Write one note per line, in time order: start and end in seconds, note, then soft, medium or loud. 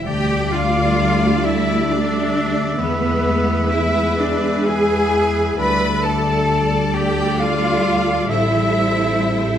0.00 0.10 E3 soft
0.00 0.29 A3 medium
0.00 0.10 C4 soft
0.00 0.75 G4 soft
0.00 0.98 A4 soft
0.04 2.75 D2 medium
0.04 2.83 D3 medium
0.04 2.75 G3 medium
0.04 4.15 A3 medium
0.04 2.76 A3 medium
0.04 2.76 D4 medium
0.04 0.52 G4 loud
0.04 2.75 D5 medium
0.04 1.40 D5 loud
0.04 0.51 G5 medium
0.04 0.55 G5 medium
0.30 2.11 A3 medium
0.52 1.88 D4 medium
0.52 1.44 F4 loud
0.52 1.44 F5 medium
0.52 1.46 F5 loud
0.77 1.21 G4 medium
0.99 1.44 A4 medium
1.23 1.66 G4 medium
1.44 1.89 E4 medium
1.44 2.83 A4 medium
1.44 1.89 E5 loud
1.44 1.89 E5 medium
1.44 6.63 E5 loud
1.67 2.83 G4 medium
1.89 2.79 D4 loud
1.89 2.34 D4 medium
1.89 2.77 D5 medium
1.89 2.80 D5 medium
2.12 2.56 A3 medium
2.57 2.83 A3 medium
2.79 5.55 E2 medium
2.79 5.63 E3 medium
2.79 5.55 G#3 medium
2.79 3.69 B3 loud
2.79 5.56 B3 medium
2.79 5.60 G#4 medium
2.79 3.73 B4 medium
2.79 3.72 B4 medium
2.79 5.55 B4 medium
3.03 4.89 B3 medium
3.26 4.66 E4 medium
3.48 3.94 G#4 medium
3.71 4.19 E4 loud
3.71 4.21 E5 medium
3.71 4.19 E5 medium
4.18 4.67 D4 loud
4.18 5.59 G#4 medium
4.18 5.63 B4 medium
4.18 4.67 D5 medium
4.44 5.63 G#4 medium
4.66 5.13 E4 medium
4.66 5.59 G#4 loud
4.66 5.58 G#5 medium
4.66 5.31 G#5 loud
4.90 5.35 B3 medium
5.14 5.63 E4 medium
5.36 5.62 B3 medium
5.58 8.25 D2 medium
5.58 8.33 D3 medium
5.58 9.58 G3 medium
5.58 8.11 D4 medium
5.58 9.58 A4 medium
5.58 6.03 B4 loud
5.58 8.26 D5 medium
5.58 6.06 B5 loud
5.58 6.03 B5 loud
5.81 7.61 A3 medium
6.04 7.38 D4 medium
6.04 6.94 A4 medium
6.04 6.95 A5 medium
6.04 6.94 A5 medium
6.94 7.39 G4 medium
6.94 8.32 D5 loud
6.94 7.41 G5 medium
6.94 7.39 G5 loud
7.39 7.84 D4 medium
7.39 8.29 F4 loud
7.39 8.29 F5 medium
7.39 8.31 F5 medium
7.86 8.34 D4 medium
8.08 9.58 A3 medium
8.28 9.58 A1 medium
8.28 9.58 A2 medium
8.28 9.58 C4 medium
8.28 9.58 E4 loud
8.28 9.58 C5 medium
8.28 9.58 E5 loud
8.53 9.58 E3 medium
8.76 9.58 C4 medium
9.20 9.58 C5 medium